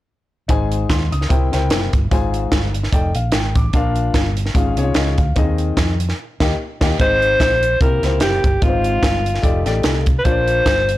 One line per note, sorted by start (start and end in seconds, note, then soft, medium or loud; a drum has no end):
0.48 0.84 G#1 medium
0.48 1.08 G#2 medium
0.48 1.01 D#4 medium
0.48 1.02 G#4 medium
0.48 1.02 C5 medium
0.48 1.02 G#5 medium
0.48 kick medium
0.48 closed hi-hat medium
0.72 closed hi-hat medium
0.90 1.09 D#2 medium
0.90 1.11 C6 medium
0.90 kick medium
0.90 snare medium
0.90 closed hi-hat medium
1.12 1.28 C#2 medium
1.12 1.51 D#6 medium
1.12 closed hi-hat medium
1.21 snare soft
1.29 1.49 C2 medium
1.29 1.89 C3 medium
1.29 1.48 E4 medium
1.29 1.48 A#4 medium
1.29 1.48 C5 medium
1.29 1.49 G5 medium
1.29 kick loud
1.29 closed hi-hat medium
1.52 1.69 C#2 medium
1.52 1.91 E4 medium
1.52 1.91 A#4 medium
1.52 1.91 C5 medium
1.52 1.92 G5 medium
1.52 snare soft
1.52 closed hi-hat medium
1.70 1.90 F#1 medium
1.70 snare loud
1.70 closed hi-hat medium
1.93 2.09 G1 medium
1.93 kick medium
1.93 closed hi-hat medium
2.11 2.46 G#1 loud
2.11 2.71 G#2 medium
2.11 2.64 F4 medium
2.11 2.64 G#4 medium
2.11 2.64 C5 medium
2.11 2.65 G#5 medium
2.11 kick medium
2.11 closed hi-hat medium
2.34 closed hi-hat medium
2.52 2.86 G1 medium
2.52 kick medium
2.52 snare loud
2.52 closed hi-hat medium
2.74 closed hi-hat medium
2.83 snare soft
2.92 3.12 F1 loud
2.92 3.10 D#4 medium
2.92 3.11 A4 medium
2.92 3.11 D5 medium
2.92 3.11 G5 medium
2.92 kick medium
2.92 closed hi-hat medium
3.15 3.31 A#1 medium
3.15 3.33 F5 medium
3.15 closed hi-hat medium
3.32 3.52 G#1 medium
3.32 3.55 G5 medium
3.32 snare loud
3.32 closed hi-hat medium
3.55 3.71 A1 medium
3.55 3.95 D6 medium
3.55 kick medium
3.55 closed hi-hat medium
3.73 4.08 A#1 medium
3.73 4.33 A#2 medium
3.73 4.26 D4 medium
3.73 4.27 F4 medium
3.73 4.27 A#4 medium
3.73 4.27 F5 loud
3.73 kick medium
3.73 closed hi-hat medium
3.96 closed hi-hat medium
4.14 4.49 G1 medium
4.14 kick medium
4.14 snare medium
4.14 closed hi-hat medium
4.37 closed hi-hat medium
4.46 snare soft
4.54 4.74 G#1 loud
4.54 5.14 G#2 medium
4.54 4.73 C#4 medium
4.54 4.73 F4 medium
4.54 4.74 G#4 medium
4.54 4.74 F5 medium
4.54 kick loud
4.54 closed hi-hat medium
4.77 4.93 C2 medium
4.77 5.16 C#4 medium
4.77 4.82 D#4 medium
4.77 5.16 G#4 medium
4.77 5.17 C#5 medium
4.77 closed hi-hat medium
4.82 5.18 F4 medium
4.94 5.15 C#2 medium
4.94 5.18 D#5 medium
4.94 snare loud
4.94 closed hi-hat medium
5.18 5.34 D2 medium
5.18 5.57 F5 medium
5.18 kick medium
5.18 closed hi-hat medium
5.36 5.71 D#2 medium
5.36 5.96 D#3 medium
5.36 5.89 C4 medium
5.36 5.89 D#4 medium
5.36 5.89 G#4 medium
5.36 5.90 D#5 medium
5.36 kick medium
5.36 closed hi-hat medium
5.58 closed hi-hat medium
5.77 6.12 F2 medium
5.77 kick medium
5.77 snare loud
5.77 closed hi-hat medium
6.00 closed hi-hat medium
6.09 snare soft
6.40 6.53 D#2 medium
6.40 6.53 A#3 medium
6.40 6.53 D#4 medium
6.40 6.53 G4 medium
6.40 kick medium
6.40 snare medium
6.40 crash medium
6.81 6.94 D#2 medium
6.81 6.93 A#3 medium
6.81 6.94 D#4 medium
6.81 6.94 G4 medium
6.81 kick medium
6.81 snare loud
6.81 crash medium
6.99 7.34 G#1 loud
6.99 7.59 G#2 medium
6.99 7.52 C4 medium
6.99 7.52 D#4 medium
6.99 7.52 G#4 medium
6.99 7.78 C5 loud
6.99 7.53 D#5 medium
6.99 kick medium
6.99 closed hi-hat medium
7.22 closed hi-hat medium
7.40 7.75 A#1 medium
7.40 kick medium
7.40 snare loud
7.40 closed hi-hat medium
7.63 closed hi-hat medium
7.81 8.00 C2 loud
7.81 8.41 C3 soft
7.81 7.99 A#3 medium
7.81 7.99 E4 medium
7.81 7.99 G4 medium
7.81 8.19 A#4 medium
7.81 8.00 C5 medium
7.81 kick loud
7.81 closed hi-hat medium
8.03 8.19 C#2 medium
8.03 8.42 A#3 medium
8.03 8.42 E4 medium
8.03 8.42 G4 medium
8.03 8.43 C5 medium
8.03 snare soft
8.03 closed hi-hat medium
8.20 8.41 F#1 medium
8.20 8.60 G4 medium
8.20 snare loud
8.20 closed hi-hat medium
8.44 8.59 G1 medium
8.44 kick medium
8.44 closed hi-hat medium
8.62 8.97 G#1 medium
8.62 9.22 G#2 medium
8.62 9.15 G#3 medium
8.62 9.15 C4 medium
8.62 9.81 F4 medium
8.62 9.15 F4 medium
8.62 8.69 B4 medium
8.62 kick medium
8.62 closed hi-hat medium
8.69 9.18 C5 medium
8.84 closed hi-hat medium
9.03 9.37 G1 medium
9.03 kick medium
9.03 snare loud
9.03 closed hi-hat medium
9.26 closed hi-hat medium
9.35 snare soft
9.42 9.63 F1 loud
9.42 9.61 A3 medium
9.42 9.61 D#4 medium
9.42 9.62 G4 medium
9.42 9.62 D5 medium
9.42 kick medium
9.42 closed hi-hat medium
9.65 9.82 A1 medium
9.65 10.04 A3 medium
9.65 10.04 D#4 medium
9.65 10.05 G4 medium
9.65 10.05 D5 medium
9.65 snare soft
9.65 closed hi-hat medium
9.83 10.19 C2 medium
9.83 snare loud
9.83 closed hi-hat medium
10.06 kick medium
10.06 closed hi-hat medium
10.19 10.26 B4 medium
10.24 10.60 A#1 medium
10.24 10.85 A#2 medium
10.24 10.77 A#3 medium
10.24 10.78 D4 medium
10.24 10.78 F4 medium
10.24 10.98 C5 loud
10.24 10.31 C#5 medium
10.24 kick medium
10.24 closed hi-hat medium
10.31 10.81 D5 medium
10.48 closed hi-hat medium
10.66 10.98 G1 medium
10.66 kick medium
10.66 snare loud
10.66 closed hi-hat medium
10.89 closed hi-hat medium